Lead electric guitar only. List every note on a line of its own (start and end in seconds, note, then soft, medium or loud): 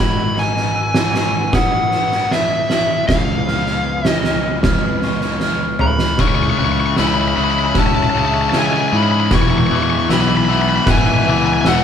0.00 0.38 B5 medium
0.39 1.55 G#5 medium
1.55 2.34 F#5 medium
2.32 3.05 E5 medium
3.07 4.09 F5 medium
4.09 4.60 D#5 medium
5.81 6.20 B5 medium
6.20 6.28 C#6 medium
6.28 6.35 C#6 medium
6.35 6.42 C#6 medium
6.43 6.50 C#6 medium
6.50 6.57 C#6 medium
6.58 6.64 C#6 medium
6.65 6.72 C#6 medium
6.72 6.79 C#6 medium
6.80 6.86 C#6 medium
6.86 6.94 C#6 medium
7.00 7.07 B5 medium
7.07 7.14 B5 medium
7.14 7.21 B5 medium
7.21 7.28 B5 medium
7.28 7.36 B5 medium
7.36 7.44 B5 medium
7.44 7.51 B5 medium
7.51 7.58 B5 medium
7.59 7.65 B5 medium
7.66 7.73 B5 medium
7.79 7.86 A5 medium
7.87 7.94 A5 medium
7.95 8.02 A5 medium
8.03 8.10 A5 medium
8.10 8.17 A5 medium
8.18 8.25 A5 medium
8.25 8.33 A5 medium
8.34 8.41 A5 medium
8.41 8.49 A5 medium
8.50 8.58 A5 medium
8.58 8.66 G#5 medium
8.66 8.73 G#5 medium
8.73 8.80 G#5 medium
8.81 8.88 G#5 medium
8.88 8.96 G#5 medium
8.96 9.03 B5 medium
9.03 9.11 B5 medium
9.11 9.19 B5 medium
9.20 9.26 B5 medium
9.26 9.34 B5 medium
9.35 9.42 C#6 medium
9.42 9.50 C#6 medium
9.50 9.58 C#6 medium
9.58 9.66 C#6 medium
9.67 9.75 C#6 medium
9.75 9.83 C#6 medium
9.83 9.90 C#6 medium
9.90 9.98 C#6 medium
9.99 10.07 C#6 medium
10.13 10.20 B5 medium
10.21 10.28 B5 medium
10.28 10.36 B5 medium
10.37 10.45 B5 medium
10.45 10.53 B5 medium
10.53 10.61 B5 medium
10.62 10.69 B5 medium
10.69 10.76 B5 medium
10.76 10.84 B5 medium
10.91 10.98 G#5 medium
10.98 11.06 G#5 medium
11.06 11.14 G#5 medium
11.14 11.22 G#5 medium
11.22 11.30 G#5 medium
11.30 11.38 G#5 medium
11.38 11.45 G#5 medium
11.46 11.53 G#5 medium
11.54 11.61 G#5 medium
11.61 11.68 G#5 medium
11.68 11.75 F#5 medium
11.76 11.83 F#5 medium